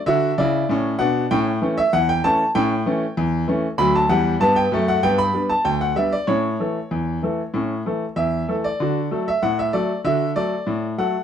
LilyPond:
<<
  \new Staff \with { instrumentName = "Grand piano" } { \time 2/4 \key d \major \tempo 4 = 96 e''8 d''4 fis''8 | g''8. e''16 fis''16 g''16 a''8 | g''4 r4 | b''16 a''16 fis''8 a''16 g''8 fis''16 |
g''16 b''8 a''16 g''16 fis''16 e''16 d''16 | cis''2~ | cis''4 e''8. d''16~ | d''8. e''16 fis''16 e''16 d''8 |
e''8 d''4 fis''8 | }
  \new Staff \with { instrumentName = "Grand piano" } { \time 2/4 \key d \major <d fis'>8 <cis e'>8 <a, cis'>8 <b, d'>8 | <a, cis'>8 <e a cis'>8 e,8 <e a cis'>8 | <a, cis'>8 <e a cis'>8 e,8 <e a cis'>8 | <d, fis>8 <e, g>8 <g, b>8 <fis, a>8 |
<g, b>8 <g b d'>8 d,8 <g b d'>8 | <a, cis'>8 <e a a'>8 e,8 <e a a'>8 | <a, cis'>8 <e a a'>8 e,8 <e a a'>8 | <d fis'>8 <fis a a'>8 a,8 <fis a a'>8 |
<d fis'>8 <fis a a'>8 a,8 <fis a a'>8 | }
>>